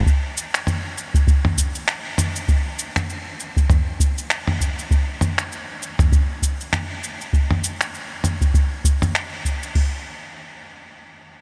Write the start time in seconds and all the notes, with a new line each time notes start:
0.06 kick, shaker
0.37 shaker
0.54 finger snap, shaker
0.67 mid tom, shaker
0.98 shaker
1.14 kick, shaker
1.27 kick, shaker
1.45 mid tom
1.58 kick, shaker
1.75 shaker
1.88 finger snap, shaker
2.18 mid tom, shaker
2.36 shaker
2.48 kick, shaker
2.79 shaker
2.96 finger snap, mid tom, shaker
3.09 shaker
3.40 shaker
3.57 kick, shaker
3.70 kick, mid tom, shaker
4.00 kick, shaker
4.18 shaker
4.30 finger snap, shaker
4.47 mid tom
4.61 kick, shaker
4.79 shaker
4.91 kick, shaker
5.21 mid tom, shaker
5.38 finger snap, shaker
5.52 shaker
5.82 shaker
5.99 kick, mid tom, shaker
6.12 kick, shaker
6.42 kick, shaker
6.61 shaker
6.73 finger snap, mid tom, shaker
7.03 shaker
7.21 shaker
7.33 kick, shaker
7.51 mid tom
7.64 shaker
7.81 finger snap, shaker
7.94 shaker
8.24 mid tom, shaker
8.41 kick, shaker
8.54 kick, shaker
8.84 kick, shaker
9.02 mid tom, shaker
9.15 finger snap, shaker
9.45 kick, shaker
9.63 shaker
9.75 kick, crash